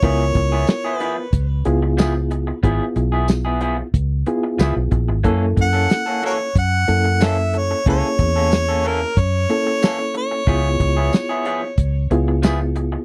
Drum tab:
HH |xxxxxxxx|xxxxxxxx|xxxxxxxx|xxxxxxxx|
TB |--x---x-|--x---x-|--x---x-|--x---x-|
SD |--o---o-|--o---o-|--o---o-|--o---o-|
BD |oo--o---|o---o--o|oo--o---|oo--o---|

HH |xxxxxxxx|
TB |--x---x-|
SD |--o---o-|
BD |oo--o---|